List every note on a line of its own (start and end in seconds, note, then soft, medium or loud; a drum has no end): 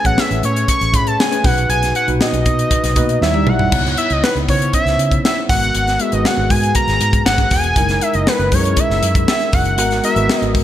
0.00 0.04 A3 medium
0.00 0.75 A3 medium
0.00 0.04 C#4 medium
0.00 0.04 G#4 medium
0.00 1.31 B4 medium
0.04 0.16 A1 loud
0.04 0.75 C#4 medium
0.04 0.75 G#4 medium
0.04 0.75 C#5 medium
0.04 0.21 F#5 loud
0.04 kick medium
0.04 closed hi-hat soft
0.18 0.44 E5 medium
0.18 snare loud
0.31 0.41 A1 medium
0.31 closed hi-hat soft
0.43 0.65 A2 medium
0.43 0.68 C#5 medium
0.43 closed hi-hat medium
0.56 closed hi-hat medium
0.68 0.96 C#6 loud
0.68 kick medium
0.68 closed hi-hat medium
0.81 0.92 A1 medium
0.81 closed hi-hat medium
0.92 1.15 A2 medium
0.92 1.23 A3 medium
0.92 1.23 C#4 medium
0.92 1.24 G#4 medium
0.92 1.24 C#5 medium
0.92 1.09 B5 loud
0.92 kick medium
0.92 closed hi-hat medium
1.07 1.21 A5 loud
1.07 closed hi-hat soft
1.19 1.46 G#5 medium
1.19 snare loud
1.30 1.44 A3 medium
1.30 1.44 C#4 medium
1.30 1.44 G#4 medium
1.30 1.43 B4 medium
1.30 closed hi-hat medium
1.43 1.66 B1 medium
1.43 1.94 A#2 medium
1.43 1.94 D#4 medium
1.43 1.94 F#4 medium
1.43 1.95 B4 medium
1.43 1.69 F#5 medium
1.43 kick loud
1.43 snare soft
1.43 open hi-hat medium
1.58 closed hi-hat soft
1.69 1.91 B1 medium
1.69 1.93 G#5 loud
1.69 closed hi-hat medium
1.83 snare soft
1.83 closed hi-hat soft
1.95 2.07 F#5 medium
1.95 closed hi-hat medium
2.06 2.18 B1 medium
2.06 2.78 A#2 medium
2.06 2.78 D#4 medium
2.06 2.78 F#4 medium
2.06 2.78 B4 medium
2.06 closed hi-hat soft
2.21 3.18 D#5 medium
2.21 snare loud
2.33 2.44 B1 medium
2.33 closed hi-hat medium
2.46 2.67 B2 medium
2.46 kick medium
2.46 closed hi-hat medium
2.59 closed hi-hat medium
2.71 kick medium
2.71 closed hi-hat medium
2.84 2.94 B1 medium
2.84 snare soft
2.84 closed hi-hat medium
2.96 3.18 B2 medium
2.96 3.21 A#3 medium
2.96 3.20 D#4 medium
2.96 3.22 F#4 medium
2.96 3.22 B4 medium
2.96 kick medium
2.96 closed hi-hat medium
3.09 closed hi-hat soft
3.21 3.47 D#2 medium
3.21 3.31 G3 medium
3.21 3.31 D#4 medium
3.21 3.32 E4 medium
3.21 3.32 C#5 medium
3.21 3.50 E5 medium
3.21 snare medium
3.34 3.64 G3 medium
3.34 3.64 D#4 medium
3.34 3.65 E4 medium
3.34 3.65 E5 medium
3.34 high tom medium
3.47 3.68 B1 medium
3.47 3.97 F#5 loud
3.47 mid tom medium
3.59 floor tom medium
3.71 3.94 C#2 loud
3.71 3.82 B3 medium
3.71 3.82 D#4 medium
3.71 3.82 E4 medium
3.71 3.82 C#5 medium
3.71 kick loud
3.71 crash medium
3.84 4.35 B3 medium
3.84 4.35 D#4 medium
3.84 4.36 E4 medium
3.84 4.36 C#5 medium
3.84 snare soft
3.97 4.14 E5 medium
3.97 closed hi-hat medium
4.10 4.21 C#2 medium
4.10 4.23 D#5 medium
4.10 closed hi-hat soft
4.24 4.35 B4 medium
4.24 snare loud
4.35 4.46 C#2 medium
4.35 closed hi-hat soft
4.48 4.70 C#3 medium
4.48 5.28 B3 medium
4.48 5.29 C#4 medium
4.48 5.29 E4 medium
4.48 4.55 C5 medium
4.48 4.72 C#5 medium
4.48 kick medium
4.48 open hi-hat medium
4.55 5.32 C#5 medium
4.62 closed hi-hat medium
4.73 5.21 E5 loud
4.73 kick medium
4.73 closed hi-hat medium
4.86 4.96 C#2 medium
4.86 snare soft
4.86 closed hi-hat soft
4.98 5.20 C#3 medium
4.98 closed hi-hat medium
5.11 kick medium
5.11 closed hi-hat soft
5.25 5.36 E5 medium
5.25 snare loud
5.48 5.71 G#1 medium
5.48 5.89 G#3 medium
5.48 5.89 B3 medium
5.48 5.90 F#4 medium
5.48 5.90 A#4 medium
5.48 6.02 F#5 loud
5.48 kick loud
5.48 snare soft
5.48 open hi-hat medium
5.62 closed hi-hat soft
5.75 5.96 G#1 loud
5.75 closed hi-hat medium
5.87 snare soft
5.87 closed hi-hat soft
5.99 6.10 G#3 medium
5.99 6.10 B3 medium
5.99 6.10 F#4 medium
5.99 6.11 G#4 medium
5.99 6.15 E5 medium
5.99 closed hi-hat medium
6.12 6.23 G#1 medium
6.12 6.93 G#3 medium
6.12 6.93 B3 medium
6.12 6.93 F#4 medium
6.12 6.93 B4 medium
6.12 6.27 D#5 medium
6.12 closed hi-hat soft
6.25 6.52 F#5 loud
6.25 snare loud
6.37 6.48 G#1 medium
6.50 6.72 G#2 medium
6.50 6.75 G#5 loud
6.50 kick medium
6.50 open hi-hat medium
6.63 closed hi-hat medium
6.75 7.22 A#5 loud
6.75 kick medium
6.75 closed hi-hat medium
6.88 6.99 G#1 medium
6.88 snare soft
6.88 closed hi-hat soft
7.01 7.22 G#2 medium
7.01 closed hi-hat medium
7.13 kick medium
7.13 closed hi-hat soft
7.26 7.47 G#1 medium
7.26 7.49 F#5 loud
7.26 snare loud
7.38 kick medium
7.38 closed hi-hat soft
7.51 7.73 E1 medium
7.51 8.03 G#5 loud
7.51 kick medium
7.51 snare soft
7.51 open hi-hat medium
7.64 closed hi-hat soft
7.76 7.98 F#1 medium
7.76 7.86 G#3 medium
7.76 7.87 D#4 medium
7.76 7.87 E4 medium
7.76 7.87 A#4 medium
7.76 kick loud
7.76 closed hi-hat medium
7.89 8.40 G#3 medium
7.89 8.40 D#4 medium
7.89 8.40 E4 medium
7.89 8.40 A#4 medium
7.89 snare soft
7.89 closed hi-hat soft
8.01 8.16 E5 medium
8.01 closed hi-hat medium
8.14 8.25 F#1 medium
8.14 8.29 D#5 medium
8.14 closed hi-hat soft
8.27 8.55 B4 medium
8.27 snare loud
8.39 8.50 F#1 loud
8.39 closed hi-hat soft
8.52 8.73 F#2 medium
8.52 9.33 G#3 medium
8.52 9.33 C#4 medium
8.52 9.33 E4 medium
8.52 8.59 G#4 medium
8.52 8.81 C#5 medium
8.52 kick medium
8.52 open hi-hat medium
8.59 9.36 A#4 medium
8.65 closed hi-hat soft
8.77 9.28 E5 loud
8.77 kick medium
8.77 closed hi-hat medium
8.90 9.01 F#1 medium
8.90 snare soft
9.02 9.24 F#2 medium
9.02 closed hi-hat medium
9.15 kick medium
9.15 closed hi-hat soft
9.28 9.56 E5 loud
9.28 snare loud
9.41 closed hi-hat soft
9.53 9.78 F#1 medium
9.53 10.04 F#5 medium
9.53 kick medium
9.53 open hi-hat medium
9.65 closed hi-hat soft
9.77 10.00 G#1 loud
9.77 9.98 G#3 medium
9.77 9.98 B3 medium
9.77 9.98 F#4 medium
9.77 9.99 A#4 medium
9.77 closed hi-hat medium
9.91 snare soft
9.91 closed hi-hat soft
10.03 10.14 G#3 medium
10.03 10.14 B3 medium
10.03 10.14 F#4 medium
10.03 10.14 A#4 medium
10.03 10.40 E5 medium
10.03 closed hi-hat medium
10.16 10.27 G#1 loud
10.16 10.64 G#3 medium
10.16 10.64 B3 medium
10.16 10.64 F#4 medium
10.16 10.64 B4 medium
10.16 closed hi-hat soft
10.29 snare loud
10.40 10.56 G#1 medium
10.40 10.51 D#5 medium
10.40 closed hi-hat soft
10.55 10.64 G#2 medium
10.55 kick medium
10.55 open hi-hat medium